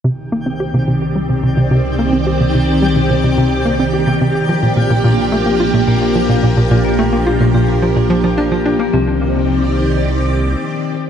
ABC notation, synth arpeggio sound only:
X:1
M:4/4
L:1/16
Q:1/4=108
K:Cm
V:1 name="Synth arpeggio sound" clef=bass
C, z B, C G C, C, z G, C, C, C, C, z B, C | G C, C, z G, C, C, C, C, z B, C G C, C, z | F, B,, B,, B,, B,, z =A, B, F B,, B,, z F, B,, B,, B,, | B,, z =A, B, F B,, B,, z F, B,, F, F, D F, D B, |
C,2 z12 z2 |]